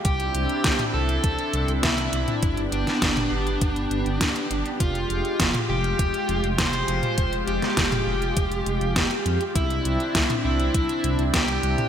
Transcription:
0.05 C2 C4 D4 E4 G4, kick, closed hi-hat
0.20 closed hi-hat
0.35 C2, closed hi-hat
0.49 closed hi-hat
0.64 C2, kick, snare, closed hi-hat
0.79 closed hi-hat, mid tom
0.94 C2 A4
1.09 closed hi-hat
1.24 C2, kick, closed hi-hat
1.39 closed hi-hat
1.53 C2, closed hi-hat
1.68 C2, closed hi-hat
1.83 C2 E4, kick, snare, closed hi-hat
1.98 closed hi-hat
2.13 C2, closed hi-hat
2.28 closed hi-hat, mid tom
2.43 G1 B3 G4, kick, closed hi-hat
2.57 closed hi-hat
2.72 G1 D4, closed hi-hat
2.87 snare, closed hi-hat
3.02 G1, kick, snare, closed hi-hat
3.17 closed hi-hat, mid tom
3.32 G1
3.47 closed hi-hat
3.61 G1, kick, closed hi-hat
3.76 closed hi-hat
3.91 G1, closed hi-hat
4.06 G1, closed hi-hat
4.21 G2, kick, snare, closed hi-hat
4.36 closed hi-hat
4.50 G1, closed hi-hat
4.66 closed hi-hat
4.80 F1 G#3 F4, kick, closed hi-hat
4.95 closed hi-hat
5.10 F1, closed hi-hat
5.25 closed hi-hat
5.40 F1, kick, snare, closed hi-hat
5.54 closed hi-hat, mid tom
5.69 F1 G4
5.84 closed hi-hat
5.99 F1, kick, closed hi-hat
6.14 closed hi-hat
6.29 F1, closed hi-hat
6.44 F1, closed hi-hat
6.58 F1 C5, kick, snare, closed hi-hat
6.73 closed hi-hat
6.88 F1, closed hi-hat
7.03 closed hi-hat, mid tom
7.18 F1, kick, closed hi-hat
7.33 closed hi-hat
7.47 F1 G4, closed hi-hat
7.62 snare, closed hi-hat
7.77 F1, kick, snare, closed hi-hat
7.92 closed hi-hat, mid tom
8.07 F1
8.22 closed hi-hat
8.37 F1, kick, closed hi-hat
8.52 closed hi-hat
8.66 F1, closed hi-hat
8.81 F1, closed hi-hat
8.96 F1, kick, snare, closed hi-hat
9.11 closed hi-hat
9.26 F2, closed hi-hat
9.41 closed hi-hat
9.55 C2 C4 D4 E4, kick, closed hi-hat
9.70 closed hi-hat
9.85 C2, closed hi-hat
10.00 closed hi-hat
10.15 C2, kick, snare, closed hi-hat
10.30 closed hi-hat, mid tom
10.44 C2 E4
10.60 closed hi-hat
10.74 C2, kick, closed hi-hat
10.89 closed hi-hat
11.04 C2, closed hi-hat
11.19 C2, closed hi-hat
11.33 C2 G4, kick, snare, closed hi-hat
11.48 closed hi-hat
11.63 C2, closed hi-hat
11.78 closed hi-hat, mid tom

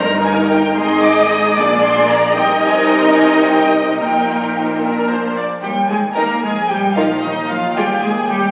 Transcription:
0.00 G1 G2 D#4 A#4 A#5
0.26 G#5
0.52 G5
0.78 G#1 G#2 D#4 G#4 D#5 C6
1.05 D6
1.31 D#6
1.56 A#1 A#2 D4 G#4 D5 D6
1.83 C6
2.09 A#5
2.35 C2 C3 D#4 A#4 D#5 G5
2.62 G#5
2.88 A#5
3.16 G#5
3.43 G5
3.70 D#5
3.97 A#1 A#2 D#4 A#4 G5
4.81 D4 A#4
5.08 C5
5.36 D5
5.63 D#2 G3 G4 G5
5.89 G#3 G#4 G#5
6.16 A#3 D#4 A#4 A#5
6.43 A#1 G#3 G#4 G#5
6.69 G3 G4 G5
6.96 F3 D#4 F4 A#4 F5
7.23 D#2 D#3 D#4 D#5
7.50 F3 F4 F5
7.76 G3 F4 G4 G#4 G5
8.03 D#2 G#3 G#4 G#5
8.29 G3 G4 G5

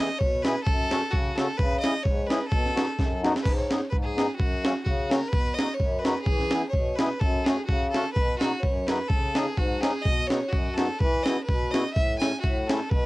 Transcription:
Already playing: D#5
0.18 B2 C#5, kick
0.42 B3 E4 B4, snare
0.47 G#4
0.63 A4, kick
0.68 F#2
0.91 C#4 F#4 A4, snare
1.11 C#3 F#4, kick
1.35 C#4 F#4 A4, snare
1.57 C#3 B4, kick
1.80 C#4 D#5
1.84 E4 G#4, snare
2.03 G#2 C#5, kick
2.27 C#4 E4 G#4 B4, snare
2.48 B2 A4
2.52 kick
2.66 snare
2.75 B3 D#4 F#4, snare
2.99 F#2, kick, snare
3.22 B3 D#4 F#4, snare
3.36 snare
3.42 G#2 B4, kick, splash
3.56 C#5
3.70 B3 D#4 G#4, snare
3.90 G#2 B4, kick
4.03 G#4
4.15 B3 D#4 G#4, snare
4.35 F#2 F#4
4.40 kick
4.63 A#3 C#4 F#4, snare
4.84 C#3 F#4, kick
5.09 A#3 C#4 F#4 A#4, snare
5.28 B4
5.32 B2, kick
5.54 D#5
5.58 B3 D#4 F#4, snare
5.74 C#5
5.80 F#2, kick
5.99 B4
6.05 B3 D#4 F#4, snare
6.21 G#4
6.26 E3, kick
6.39 snare
6.51 B3 E4 G#4, snare
6.69 C#5
6.73 B2, kick
6.95 B3 B4, snare
6.99 E4 G#4
7.19 F#2 A4, kick
7.44 A3 C#4 F#4 G#4, snare
7.66 C#3 F#4, kick
7.90 A3 A4
7.94 C#4 F#4, snare
8.13 B4, kick
8.18 B2
8.38 B3 F#4, snare
8.43 D#4 F#4
8.60 C#5, kick
8.66 F#2
8.87 B3 D#4 F#4 B4, snare
9.08 C#3 A4, kick
9.35 C#4 D#4 G#4, snare
9.57 G#2 F#4, kick
9.81 C#4 D#4 G#4, snare
10.01 B2 D#5, kick
10.27 B3 D#4 F#4 C#5, snare
10.48 F#2 F#4
10.53 kick
10.74 B3 D#4 F#4 A4, snare
10.98 E3 B4, kick
11.23 D#5, snare
11.27 B3 E4 F#4
11.43 B4
11.49 B2, kick
11.71 B3 E4 F#4 D#5, snare
11.93 A2 E5, kick
12.18 A3 C#4 E4 G#5, snare
12.41 F#4, kick
12.45 A2
12.67 A3 C#4 E4 A4, snare
12.90 B2 B4, kick

